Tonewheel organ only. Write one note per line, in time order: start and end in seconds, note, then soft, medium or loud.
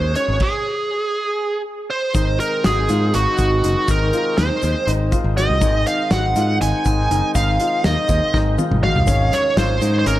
0.00 0.38 G#3 medium
0.00 0.39 C#4 medium
0.00 0.39 F#4 medium
2.14 5.57 D#3 medium
2.14 5.57 G#3 medium
2.14 5.58 C4 medium
5.60 9.02 D#3 medium
5.60 9.03 G#3 medium
5.60 9.04 C4 medium
9.05 10.20 D#3 medium
9.05 10.20 G#3 medium
9.05 10.20 C#4 medium